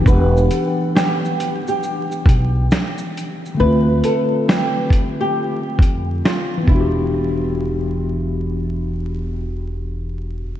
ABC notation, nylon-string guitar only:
X:1
M:4/4
L:1/16
Q:"Swing 16ths" 1/4=68
K:Em
V:1 name="Nylon-string guitar"
B2 A2 G3 G2 z6 z | B2 A2 G3 G2 z3 =F2 E2- | E12 z4 |]